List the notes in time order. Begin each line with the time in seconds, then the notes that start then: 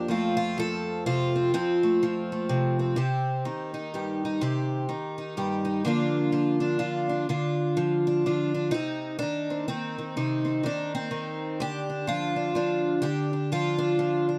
Already playing: G4
0.08 F2 F3 A3 C4 F4
0.37 F4
0.58 F3 A4
1.06 C3 F4
1.36 C4
1.54 F2 C4
1.83 A3
2.03 F3
2.32 A3
2.49 C3
2.79 C4
2.96 C3 G4
3.45 D#3
3.74 D#4
3.94 G2 G4
4.25 D#4
4.41 C3 G4
4.89 D#3
5.18 D#4
5.37 G2 G4
5.65 D#4
5.85 D3 F3 A#3 D4 F4
6.32 F3
6.60 D4
6.79 D3 F4
7.09 D4
7.29 D3 F4
7.77 F3
8.07 D4
8.26 D3 F4
8.55 D4
8.71 C3 D#4
9.19 D#3 D4
9.50 C4
9.68 D#3 C4
9.98 D#3
10.17 C3 D#4
10.45 C4
10.63 D#3 D4
10.95 C4
11.11 D#3
11.60 D3 G4
11.90 D4
12.07 F3 F4
12.36 D4
12.55 F3 D4
13.02 D3 G4
13.33 D4
13.52 F3 F4
13.79 D4
13.99 F3
14.29 D4